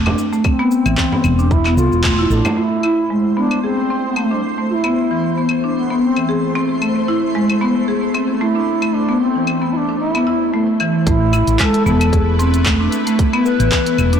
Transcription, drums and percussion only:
0.06 frame drum, claves
0.18 shaker
0.33 shaker
0.44 kick, claves, shaker
0.71 shaker
0.86 claves, shaker
0.98 kick, clap, shaker
1.12 frame drum
1.24 claves, shaker
1.39 shaker
1.51 kick, shaker
1.66 clap, claves
1.78 shaker
1.92 shaker
2.04 kick, clap, claves, shaker
2.31 shaker
2.45 frame drum, claves, shaker
2.83 claves
3.51 claves
4.16 claves
4.84 claves
5.49 claves
6.16 claves
6.82 claves
7.50 claves
8.15 claves
8.82 claves
9.47 claves
10.15 claves
10.80 claves
11.07 kick, closed hi-hat, shaker
11.33 claves, shaker
11.47 closed hi-hat, shaker
11.59 kick, clap, closed hi-hat
11.74 closed hi-hat
11.86 shaker
12.01 closed hi-hat, claves, shaker
12.13 kick, closed hi-hat, shaker
12.40 closed hi-hat, shaker
12.54 closed hi-hat, shaker
12.66 kick, clap, claves, shaker
12.92 closed hi-hat, shaker
13.07 closed hi-hat, shaker
13.19 kick, closed hi-hat, shaker
13.33 claves
13.46 shaker
13.60 closed hi-hat, shaker
13.72 kick, clap, closed hi-hat, shaker
13.86 closed hi-hat
13.98 claves, shaker
14.13 closed hi-hat, shaker

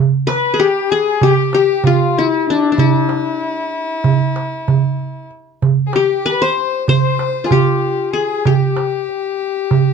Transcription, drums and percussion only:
0.28 darbuka tek
0.59 darbuka ka
1.21 darbuka dum
1.53 darbuka tek
1.84 darbuka dum
2.16 darbuka ka
2.47 darbuka ka
2.78 darbuka dum
3.09 darbuka tek
3.41 darbuka ka
4.04 darbuka dum
4.36 darbuka tek
4.68 darbuka dum
4.99 darbuka ka
5.31 darbuka ka
5.62 darbuka dum
5.93 darbuka tek
6.25 darbuka ka
6.88 darbuka dum
7.19 darbuka tek
7.51 darbuka dum
7.83 darbuka ka
8.14 darbuka ka
8.45 darbuka dum
8.77 darbuka tek
9.09 darbuka ka
9.71 darbuka dum

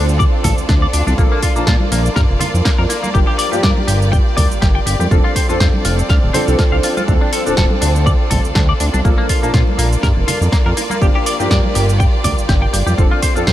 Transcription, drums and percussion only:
0.09 shaker
0.20 kick, shaker
0.44 kick, open hi-hat, high conga, low conga, shaker
0.58 shaker
0.69 kick, snare, shaker
0.93 open hi-hat, shaker
1.07 high bongo, high conga, shaker
1.18 kick, shaker
1.32 high bongo
1.43 kick, open hi-hat, shaker
1.56 shaker
1.67 kick, snare, shaker
1.80 high conga
1.92 open hi-hat, shaker
2.06 shaker
2.16 kick, snare, shaker
2.40 open hi-hat, high bongo, high conga, low conga, shaker
2.54 high bongo, shaker
2.65 kick, snare, shaker
2.90 open hi-hat, high bongo, shaker
3.04 high conga, shaker
3.15 kick, shaker
3.27 high bongo
3.39 open hi-hat, shaker
3.53 shaker
3.63 kick, snare, shaker
3.78 high conga
3.88 open hi-hat, shaker
4.02 shaker
4.13 kick, shaker
4.37 kick, open hi-hat, high conga, low conga, shaker
4.52 shaker
4.62 kick, snare, shaker
4.87 open hi-hat, shaker
5.00 high bongo, high conga, shaker
5.11 kick, shaker
5.25 high bongo
5.36 kick, open hi-hat, shaker
5.50 shaker
5.60 kick, snare, shaker
5.74 high conga
5.85 open hi-hat, shaker
5.99 shaker
6.09 kick, snare, shaker
6.34 open hi-hat, high bongo, high conga, low conga, shaker
6.48 high bongo, shaker
6.59 kick, snare, shaker
6.83 open hi-hat, high bongo, shaker
6.97 high conga, shaker
7.08 kick, shaker
7.21 high bongo
7.33 open hi-hat, shaker
7.46 shaker
7.57 kick, snare, shaker
7.71 high conga
7.82 open hi-hat, shaker
7.96 shaker
8.07 kick, shaker
8.31 kick, open hi-hat, high conga, low conga, shaker
8.45 shaker
8.55 kick, snare, shaker
8.80 open hi-hat, shaker
8.94 high bongo, high conga, shaker
9.05 kick, shaker
9.19 high bongo
9.29 kick, open hi-hat, shaker
9.43 shaker
9.54 kick, snare, shaker
9.67 high conga
9.79 open hi-hat, shaker
9.93 shaker
10.03 kick, snare, shaker
10.28 open hi-hat, high bongo, high conga, low conga, shaker
10.41 high bongo, shaker
10.52 kick, snare, shaker
10.77 open hi-hat, high bongo, shaker
10.90 high conga, shaker
11.02 kick, shaker
11.15 high bongo
11.26 open hi-hat, shaker
11.40 shaker
11.51 kick, snare, shaker
11.64 high conga
11.75 open hi-hat, shaker
11.89 shaker
12.00 kick, shaker
12.24 kick, open hi-hat, high conga, low conga, shaker
12.38 shaker
12.49 kick, snare, shaker
12.74 open hi-hat, shaker
12.87 high bongo, high conga, shaker
12.98 kick, shaker
13.12 high bongo
13.23 kick, open hi-hat, shaker
13.36 shaker
13.47 kick, snare, shaker

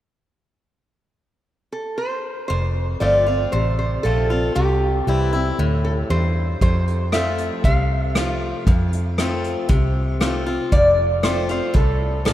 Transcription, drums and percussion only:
6.61 kick, closed hi-hat
6.87 closed hi-hat
7.12 cross-stick, closed hi-hat
7.38 closed hi-hat
7.64 kick, closed hi-hat
8.15 cross-stick, closed hi-hat
8.66 kick, closed hi-hat
8.92 closed hi-hat
9.18 cross-stick, closed hi-hat
9.44 closed hi-hat
9.69 kick, closed hi-hat
10.21 cross-stick, closed hi-hat
10.72 kick, closed hi-hat
11.23 cross-stick, closed hi-hat
11.49 closed hi-hat
11.75 kick, closed hi-hat
12.26 cross-stick, closed hi-hat

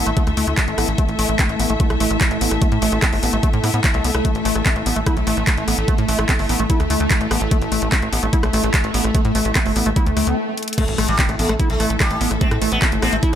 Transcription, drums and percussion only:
0.07 closed hi-hat
0.17 kick, closed hi-hat
0.27 cross-stick, closed hi-hat
0.37 open hi-hat
0.47 closed hi-hat
0.58 kick, clap, closed hi-hat
0.68 closed hi-hat
0.78 cross-stick, open hi-hat
0.88 closed hi-hat
0.98 kick, closed hi-hat
1.09 closed hi-hat
1.19 open hi-hat
1.39 kick, cross-stick, clap, closed hi-hat
1.49 closed hi-hat
1.60 open hi-hat
1.70 closed hi-hat
1.80 kick, closed hi-hat
1.90 cross-stick, closed hi-hat
2.00 open hi-hat
2.11 closed hi-hat
2.21 kick, clap, closed hi-hat
2.31 closed hi-hat
2.41 open hi-hat
2.51 cross-stick, closed hi-hat
2.62 kick, closed hi-hat
2.72 closed hi-hat
2.82 open hi-hat
2.92 closed hi-hat
3.02 kick, cross-stick, clap, closed hi-hat
3.13 open hi-hat
3.23 open hi-hat
3.33 closed hi-hat
3.43 kick, closed hi-hat
3.53 closed hi-hat
3.64 cross-stick, open hi-hat
3.74 closed hi-hat
3.84 kick, clap, closed hi-hat
3.94 closed hi-hat
4.04 open hi-hat
4.15 cross-stick, closed hi-hat
4.25 kick, closed hi-hat
4.35 closed hi-hat
4.45 open hi-hat
4.55 cross-stick, closed hi-hat
4.66 kick, clap, closed hi-hat
4.76 closed hi-hat
4.86 open hi-hat
4.96 closed hi-hat
5.06 kick, cross-stick, closed hi-hat
5.17 closed hi-hat
5.27 open hi-hat
5.37 closed hi-hat
5.47 kick, clap, closed hi-hat
5.58 closed hi-hat
5.68 cross-stick, open hi-hat
5.78 closed hi-hat
5.88 kick, closed hi-hat
5.98 closed hi-hat
6.08 open hi-hat
6.19 cross-stick
6.29 kick, clap, closed hi-hat
6.39 open hi-hat
6.49 open hi-hat
6.60 closed hi-hat
6.70 kick, closed hi-hat
6.80 cross-stick, closed hi-hat
6.90 open hi-hat
7.00 closed hi-hat
7.11 kick, clap, closed hi-hat
7.21 closed hi-hat
7.31 cross-stick, open hi-hat
7.41 closed hi-hat
7.51 kick, closed hi-hat
7.62 closed hi-hat
7.72 open hi-hat
7.82 closed hi-hat
7.92 kick, cross-stick, clap, closed hi-hat
8.02 closed hi-hat
8.13 open hi-hat
8.23 closed hi-hat
8.33 kick, closed hi-hat
8.43 cross-stick, closed hi-hat
8.53 open hi-hat
8.64 closed hi-hat
8.74 kick, clap, closed hi-hat
8.84 closed hi-hat
8.94 open hi-hat
9.04 cross-stick
9.15 kick, closed hi-hat
9.25 closed hi-hat
9.35 open hi-hat
9.45 closed hi-hat
9.55 kick, cross-stick, clap, closed hi-hat
9.66 open hi-hat
9.76 open hi-hat
9.86 closed hi-hat
9.96 kick, closed hi-hat
10.06 closed hi-hat
10.17 cross-stick, open hi-hat
10.27 closed hi-hat
10.57 closed hi-hat
10.63 closed hi-hat
10.68 closed hi-hat
10.73 closed hi-hat
10.78 kick, cross-stick, closed hi-hat, crash
10.88 closed hi-hat
10.98 cross-stick, open hi-hat
11.09 closed hi-hat
11.19 kick, clap, closed hi-hat
11.29 cross-stick, closed hi-hat
11.39 open hi-hat
11.49 cross-stick, closed hi-hat
11.60 kick, closed hi-hat
11.70 closed hi-hat
11.80 cross-stick, open hi-hat
11.90 closed hi-hat
12.00 kick, cross-stick, clap, closed hi-hat
12.11 closed hi-hat
12.21 open hi-hat
12.31 cross-stick, closed hi-hat
12.41 kick, closed hi-hat
12.51 cross-stick, closed hi-hat
12.62 open hi-hat
12.72 closed hi-hat
12.82 kick, cross-stick, clap, closed hi-hat
12.92 closed hi-hat
13.02 cross-stick, open hi-hat
13.13 closed hi-hat
13.23 kick, closed hi-hat

